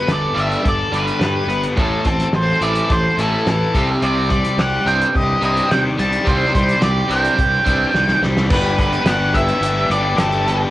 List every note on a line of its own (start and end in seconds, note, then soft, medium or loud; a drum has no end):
0.00 0.93 G3 medium
0.00 1.21 B3 medium
0.00 0.11 B4 medium
0.07 0.26 G1 medium
0.07 0.33 G2 medium
0.07 0.34 D3 medium
0.07 0.64 A4 medium
0.07 snare loud
0.07 closed hi-hat medium
0.11 0.40 D5 medium
0.34 0.55 G1 medium
0.34 0.61 G2 medium
0.34 0.62 D3 medium
0.34 0.63 G3 medium
0.34 0.91 D4 medium
0.34 closed hi-hat medium
0.40 0.68 E5 medium
0.52 closed hi-hat medium
0.62 0.83 G1 medium
0.62 0.89 G2 medium
0.62 0.90 D3 medium
0.62 1.78 A4 medium
0.62 kick loud
0.62 closed hi-hat medium
0.68 0.96 D5 medium
0.92 1.10 G1 medium
0.92 1.19 G2 medium
0.92 1.20 D3 medium
0.92 1.20 G3 loud
0.92 1.77 D4 medium
0.92 closed hi-hat medium
0.96 1.23 B4 medium
1.08 closed hi-hat medium
1.20 1.38 G2 medium
1.20 1.46 G2 medium
1.20 1.47 D3 medium
1.20 1.77 G3 medium
1.20 snare loud
1.20 closed hi-hat medium
1.24 1.62 B4 medium
1.47 1.66 G1 medium
1.47 1.74 G2 medium
1.47 1.75 D3 medium
1.47 1.77 B3 medium
1.47 closed hi-hat medium
1.64 closed hi-hat medium
1.76 1.95 A1 medium
1.76 2.03 A2 medium
1.76 3.18 A2 medium
1.76 2.04 E3 medium
1.76 2.04 A3 medium
1.76 2.07 A4 medium
1.76 kick loud
1.76 closed hi-hat medium
2.05 2.23 A1 medium
2.05 2.31 A2 medium
2.05 2.31 E3 medium
2.05 4.30 C4 medium
2.05 2.33 A4 medium
2.05 kick loud
2.05 closed hi-hat medium
2.20 snare soft
2.20 closed hi-hat medium
2.33 2.51 A1 medium
2.33 2.59 A2 medium
2.33 2.59 E3 medium
2.33 2.88 A4 medium
2.33 2.61 C5 medium
2.33 snare loud
2.33 closed hi-hat medium
2.61 2.79 A1 medium
2.61 2.88 A2 medium
2.61 2.88 E3 medium
2.61 2.89 A3 loud
2.61 3.16 E4 medium
2.61 2.91 D5 medium
2.61 closed hi-hat medium
2.75 closed hi-hat medium
2.89 3.08 A1 medium
2.89 3.16 A2 medium
2.89 3.16 E3 medium
2.89 3.74 A4 medium
2.89 3.17 C5 medium
2.89 kick loud
2.89 closed hi-hat medium
3.17 3.35 A1 medium
3.17 3.45 A2 medium
3.17 3.45 E3 medium
3.17 3.46 A3 loud
3.17 3.74 E4 medium
3.17 3.47 A4 medium
3.17 closed hi-hat medium
3.46 3.64 A1 medium
3.46 3.72 A2 medium
3.46 3.74 E3 medium
3.46 3.72 E3 medium
3.46 3.87 A4 medium
3.46 snare loud
3.46 closed hi-hat medium
3.74 3.92 C2 medium
3.74 4.02 C3 medium
3.74 4.01 C3 medium
3.74 4.01 G3 medium
3.74 4.02 C4 loud
3.74 kick loud
3.74 closed hi-hat medium
4.02 4.38 C2 medium
4.02 5.43 C3 medium
4.02 4.29 C3 medium
4.02 4.30 G3 medium
4.02 4.30 C4 medium
4.02 8.47 C5 medium
4.02 8.47 D5 medium
4.02 4.29 D5 medium
4.02 8.47 G5 medium
4.02 closed hi-hat medium
4.30 4.56 C3 medium
4.30 5.99 G3 medium
4.30 4.56 G3 medium
4.30 4.59 D5 loud
4.30 kick medium
4.30 closed hi-hat medium
4.45 snare soft
4.45 closed hi-hat medium
4.57 4.76 C2 medium
4.57 4.84 C3 medium
4.57 4.84 G3 medium
4.57 5.14 G4 medium
4.57 4.87 F#5 medium
4.57 snare loud
4.57 closed hi-hat medium
4.85 5.03 C2 medium
4.85 5.12 C3 medium
4.85 5.13 G3 loud
4.85 5.13 C4 loud
4.85 5.43 D4 medium
4.85 5.13 G5 loud
4.85 closed hi-hat medium
5.02 closed hi-hat medium
5.14 5.33 C2 medium
5.14 5.39 C3 medium
5.14 5.40 G3 medium
5.14 6.55 G4 medium
5.14 5.42 D#5 medium
5.14 kick loud
5.14 closed hi-hat medium
5.41 5.60 C2 medium
5.41 5.68 C3 loud
5.41 5.68 G3 medium
5.41 5.69 C4 medium
5.41 6.83 D4 medium
5.41 5.72 D#5 medium
5.41 closed hi-hat medium
5.57 closed hi-hat medium
5.69 5.95 C3 medium
5.69 5.89 C3 medium
5.69 7.11 D#3 medium
5.69 5.95 G3 medium
5.69 5.79 G5 medium
5.69 snare loud
5.69 closed hi-hat medium
5.98 6.16 C2 medium
5.98 6.23 C3 medium
5.98 6.24 G3 medium
5.98 6.54 G3 medium
5.98 6.28 A5 loud
5.98 closed hi-hat medium
6.13 closed hi-hat medium
6.24 6.45 C2 medium
6.24 6.52 C3 medium
6.24 7.66 C3 medium
6.24 6.52 G3 medium
6.24 6.52 C4 medium
6.24 6.53 C5 medium
6.24 kick loud
6.24 closed hi-hat medium
6.53 6.73 C2 medium
6.53 6.79 C3 medium
6.53 6.80 G3 medium
6.53 7.95 G3 medium
6.53 6.84 C5 medium
6.53 kick loud
6.53 closed hi-hat medium
6.69 closed hi-hat medium
6.81 7.01 C2 medium
6.81 7.07 C3 medium
6.81 7.07 G3 medium
6.81 7.37 G4 medium
6.81 7.11 D5 medium
6.81 snare loud
6.81 closed hi-hat medium
7.08 7.28 C2 medium
7.08 7.36 C3 medium
7.08 7.36 G3 loud
7.08 7.36 C4 medium
7.08 7.65 D4 medium
7.08 8.19 G5 medium
7.08 closed hi-hat medium
7.25 closed hi-hat medium
7.37 7.56 C2 medium
7.37 7.63 C3 medium
7.37 7.64 G3 medium
7.37 8.50 G4 medium
7.37 kick loud
7.37 closed hi-hat medium
7.65 7.84 C2 loud
7.65 7.92 C3 medium
7.65 7.92 G3 loud
7.65 7.92 C4 medium
7.65 8.49 D4 medium
7.65 kick medium
7.65 closed hi-hat medium
7.94 8.12 C2 medium
7.94 8.20 C3 medium
7.94 8.49 D#3 medium
7.94 8.20 G3 medium
7.94 snare medium
8.08 snare medium
8.22 8.52 C2 medium
8.22 8.48 C3 medium
8.22 8.49 G3 medium
8.22 8.48 G3 medium
8.22 snare medium
8.37 snare medium
8.50 8.96 G1 loud
8.50 8.76 G3 medium
8.50 8.77 B3 loud
8.50 8.78 B3 medium
8.50 8.77 D4 loud
8.50 10.70 G4 medium
8.50 8.78 G4 medium
8.50 10.70 B4 medium
8.50 8.79 B4 medium
8.50 10.70 D5 medium
8.50 10.70 A5 medium
8.50 kick loud
8.50 crash loud
8.77 9.04 G3 medium
8.77 9.04 B3 medium
8.77 9.05 B3 medium
8.77 9.05 D4 loud
8.77 9.06 G4 medium
8.77 9.08 B4 medium
8.77 kick medium
8.77 closed hi-hat medium
8.93 closed hi-hat soft
9.04 9.51 G1 medium
9.04 9.33 G3 medium
9.04 9.33 B3 medium
9.04 9.33 D4 loud
9.04 9.34 F#4 medium
9.04 9.34 G4 loud
9.04 9.36 F#5 medium
9.04 snare loud
9.04 closed hi-hat loud
9.34 9.60 G3 medium
9.34 9.61 B3 loud
9.34 9.61 D4 loud
9.34 9.88 E4 medium
9.34 9.61 G4 loud
9.34 9.91 E5 medium
9.34 kick medium
9.34 closed hi-hat medium
9.48 closed hi-hat soft
9.60 9.84 G1 medium
9.60 9.89 G3 medium
9.60 9.90 B3 medium
9.60 9.89 D4 medium
9.60 9.90 G4 medium
9.60 closed hi-hat loud
9.90 10.13 G1 medium
9.90 10.16 G3 medium
9.90 10.16 B3 medium
9.90 10.17 D4 medium
9.90 10.18 G4 medium
9.90 10.20 D5 medium
9.90 closed hi-hat medium
10.16 10.64 G1 medium
10.16 10.45 G3 loud
10.16 10.58 A3 medium
10.16 10.45 B3 loud
10.16 10.46 D4 loud
10.16 10.46 G4 loud
10.16 10.57 A4 medium
10.16 snare loud
10.16 closed hi-hat loud
10.32 closed hi-hat soft
10.46 10.70 G3 loud
10.46 10.70 B3 medium
10.46 10.70 D4 loud
10.46 10.70 G4 loud
10.46 snare soft
10.46 closed hi-hat medium